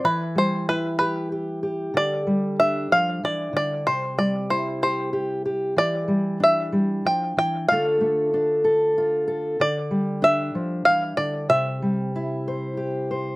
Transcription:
<<
  \new Staff \with { instrumentName = "Five-string banjo" } { \time 6/8 \key e \phrygian \tempo 4. = 63 b'8 c''8 b'8 b'4 r8 | d''4 e''8 f''8 d''8 d''8 | c''8 d''8 c''8 c''4 r8 | d''4 e''4 g''8 g''8 |
f''2 r4 | d''4 e''4 f''8 d''8 | e''2 r4 | }
  \new Staff \with { instrumentName = "Steel-string acoustic guitar" } { \time 6/8 \key e \phrygian << { r4 e'8 g'8 g'8 g'8 | r4 d'2 | r4 e'8 g'8 g'8 g'8 | r4 d'2 |
<a d' f' a'>4 d'8 a'8 f'8 a'8 | r4 d'2 | r4 e'8 c''8 g'8 c''8 | } \\ { e8 g2~ g8 | d8 g4 f8 e8 d8 | c8 g2~ g8 | e8 g4 g8 f8 e8 |
d8 a2~ a8 | d8 g4 f8 e8 d8 | c8 g2~ g8 | } >> }
>>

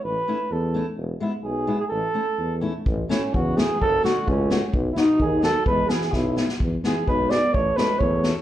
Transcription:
<<
  \new Staff \with { instrumentName = "Flugelhorn" } { \time 2/4 \key a \major \tempo 4 = 128 b'4 a'8. r16 | r8 e'8 gis'8. gis'16 | a'4. r8 | r8 cis'8 fis'8 gis'8 |
a'8 fis'8 cis'8. r16 | r16. e'32 dis'8 gis'8 a'8 | b'8 gis'8 e'8. r16 | r8 gis'8 b'8 d''8 |
cis''8 b'8 cis''8. r16 | }
  \new Staff \with { instrumentName = "Steel-string acoustic guitar" } { \time 2/4 \key a \major r8 <a cis' e'>8 r8 <a cis' e'>8 | r8 <gis b e'>8 r8 <gis b e'>8 | r8 <a cis' e'>8 r8 <a cis' e'>8 | r8 <a cis' e'>8 r8 <a cis' e'>8 |
r8 <a cis' fis'>8 r8 <a cis' fis'>8 | r8 <b dis' fis'>8 r8 <b dis' fis'>8 | r8 <b e' gis'>8 r8 <b e' gis'>8 | r8 <b e' gis'>8 r8 <b e' gis'>8 |
r8 <cis' e' a'>8 r8 <cis' e' a'>8 | }
  \new Staff \with { instrumentName = "Euphonium" } { \clef bass \time 2/4 \key a \major r2 | r2 | r2 | r8 a,8 cis8 e8 |
fis8 d8 a,8. r16 | r16. cis32 b,8 dis8 fis8 | gis8 e8 b,8. r16 | r8 e8 gis8 b8 |
a8 gis8 a8. r16 | }
  \new Staff \with { instrumentName = "Tuba" } { \clef bass \time 2/4 \key a \major a,,8 r8 e,4 | e,,8 r8 b,,4 | a,,8 r8 e,4 | a,,8 r8 e,4 |
fis,,8 r8 cis,4 | b,,8 r8 dis,4 | e,8 r8 b,,4 | e,8 r8 b,,4 |
a,,8 r8 e,4 | }
  \new DrumStaff \with { instrumentName = "Drums" } \drummode { \time 2/4 r4 r4 | r4 r4 | r4 r4 | bd8 sn8 bd8 sn8 |
bd8 sn8 bd8 sn8 | bd8 sn8 bd8 sn8 | bd8 sn16 sn16 <bd sn>8 sn16 sn16 | bd8 sn8 bd8 sn8 |
bd8 sn8 bd8 sn8 | }
>>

